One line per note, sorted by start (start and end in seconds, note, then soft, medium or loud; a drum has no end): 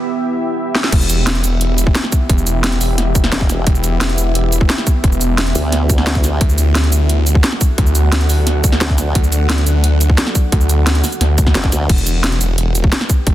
0.00 0.88 B3 medium
0.00 0.88 E4 medium
0.00 0.88 G4 medium
0.00 0.88 E5 medium
0.75 snare medium
0.84 snare medium
0.92 1.42 E1 loud
0.92 6.37 B3 medium
0.92 6.37 E4 medium
0.92 6.37 G4 medium
0.92 6.37 E5 medium
0.92 kick loud
0.92 closed hi-hat loud
0.92 crash loud
1.01 cabasa soft
1.10 closed hi-hat medium
1.10 cabasa medium
1.27 snare loud
1.27 closed hi-hat loud
1.35 closed hi-hat soft
1.44 1.94 E1 loud
1.44 closed hi-hat medium
1.44 cabasa medium
1.61 closed hi-hat loud
1.78 closed hi-hat medium
1.78 cabasa medium
1.87 kick loud
1.95 snare loud
1.95 closed hi-hat loud
2.04 snare soft
2.12 kick loud
2.12 closed hi-hat medium
2.12 cabasa medium
2.29 2.80 E1 loud
2.29 kick loud
2.29 closed hi-hat medium
2.38 cabasa soft
2.47 closed hi-hat medium
2.47 cabasa medium
2.64 snare loud
2.64 closed hi-hat medium
2.72 closed hi-hat soft
2.81 3.31 E1 loud
2.81 open hi-hat medium
2.81 cabasa medium
2.98 snare soft
2.98 closed hi-hat loud
3.15 kick loud
3.15 closed hi-hat medium
3.15 cabasa medium
3.24 snare soft
3.32 3.65 E1 medium
3.32 snare loud
3.32 closed hi-hat medium
3.41 kick loud
3.50 snare soft
3.50 closed hi-hat medium
3.50 cabasa medium
3.67 4.17 E1 loud
3.67 kick loud
3.67 closed hi-hat medium
3.75 cabasa soft
3.84 closed hi-hat medium
3.84 cabasa medium
4.01 snare loud
4.01 closed hi-hat medium
4.09 closed hi-hat soft
4.18 4.68 E1 loud
4.18 closed hi-hat medium
4.18 cabasa medium
4.35 closed hi-hat medium
4.52 closed hi-hat medium
4.52 cabasa medium
4.61 kick loud
4.70 snare loud
4.70 closed hi-hat medium
4.78 snare soft
4.87 kick loud
4.87 closed hi-hat medium
4.87 cabasa medium
5.04 5.54 E1 loud
5.04 kick loud
5.04 closed hi-hat medium
5.12 cabasa soft
5.21 closed hi-hat medium
5.21 cabasa medium
5.38 snare loud
5.38 closed hi-hat medium
5.47 closed hi-hat soft
5.55 6.40 D2 loud
5.55 open hi-hat medium
5.55 cabasa medium
5.72 snare soft
5.72 closed hi-hat medium
5.90 kick loud
5.90 closed hi-hat medium
5.90 cabasa medium
5.98 snare soft
6.07 snare loud
6.07 closed hi-hat medium
6.15 kick loud
6.15 closed hi-hat soft
6.24 snare soft
6.24 closed hi-hat medium
6.24 cabasa medium
6.41 6.91 D2 loud
6.41 11.86 D4 medium
6.41 11.86 F#4 medium
6.41 11.86 A4 medium
6.41 11.86 F#5 medium
6.41 kick loud
6.41 closed hi-hat medium
6.49 cabasa soft
6.58 closed hi-hat medium
6.58 cabasa medium
6.75 snare loud
6.75 closed hi-hat medium
6.84 closed hi-hat soft
6.92 7.42 D2 loud
6.92 closed hi-hat medium
6.92 cabasa medium
7.09 closed hi-hat medium
7.27 closed hi-hat medium
7.27 cabasa medium
7.35 kick loud
7.44 snare loud
7.44 closed hi-hat medium
7.52 snare soft
7.61 kick loud
7.61 closed hi-hat medium
7.61 cabasa medium
7.78 8.28 D2 loud
7.78 kick loud
7.78 closed hi-hat medium
7.87 cabasa soft
7.95 closed hi-hat medium
7.95 cabasa medium
8.12 snare loud
8.12 closed hi-hat loud
8.21 closed hi-hat soft
8.29 8.80 D2 loud
8.29 open hi-hat medium
8.29 cabasa medium
8.47 snare soft
8.47 closed hi-hat loud
8.64 kick loud
8.64 closed hi-hat medium
8.64 cabasa medium
8.72 snare soft
8.81 9.14 D2 loud
8.81 snare loud
8.81 closed hi-hat medium
8.90 kick loud
8.98 snare soft
8.98 closed hi-hat medium
8.98 cabasa medium
9.15 9.65 D2 loud
9.15 kick loud
9.15 closed hi-hat loud
9.24 cabasa soft
9.32 closed hi-hat medium
9.32 cabasa medium
9.49 snare loud
9.49 closed hi-hat loud
9.58 closed hi-hat soft
9.67 10.17 D2 loud
9.67 closed hi-hat medium
9.67 cabasa medium
9.84 closed hi-hat loud
10.01 closed hi-hat medium
10.01 cabasa medium
10.10 kick loud
10.18 snare loud
10.18 closed hi-hat loud
10.27 snare soft
10.35 kick loud
10.35 closed hi-hat medium
10.35 cabasa medium
10.52 11.02 D2 loud
10.52 kick loud
10.52 closed hi-hat loud
10.61 cabasa soft
10.69 closed hi-hat medium
10.69 cabasa medium
10.87 snare loud
10.87 closed hi-hat loud
10.95 closed hi-hat soft
11.04 snare soft
11.04 open hi-hat medium
11.04 cabasa medium
11.12 closed hi-hat soft
11.12 cabasa soft
11.21 11.54 D2 loud
11.21 snare soft
11.21 closed hi-hat loud
11.38 kick loud
11.38 closed hi-hat medium
11.38 cabasa medium
11.47 kick medium
11.47 snare soft
11.55 11.71 F#1 medium
11.55 snare loud
11.55 closed hi-hat loud
11.64 kick loud
11.64 snare soft
11.64 closed hi-hat soft
11.72 11.88 D2 loud
11.72 snare soft
11.72 closed hi-hat medium
11.72 cabasa medium
11.89 12.40 E1 medium
11.89 13.35 E4 medium
11.89 13.35 G4 medium
11.89 13.35 B4 medium
11.89 13.35 G5 medium
11.89 kick loud
11.89 closed hi-hat loud
11.89 crash medium
11.98 cabasa soft
12.07 closed hi-hat medium
12.07 cabasa medium
12.24 snare loud
12.24 closed hi-hat loud
12.32 closed hi-hat soft
12.41 12.91 E1 loud
12.41 closed hi-hat medium
12.41 cabasa medium
12.58 closed hi-hat loud
12.75 closed hi-hat medium
12.75 cabasa medium
12.84 kick loud
12.92 snare loud
12.92 closed hi-hat medium
13.01 snare medium
13.10 kick loud
13.10 closed hi-hat medium
13.10 cabasa medium
13.27 13.35 E1 loud
13.27 kick loud
13.27 closed hi-hat loud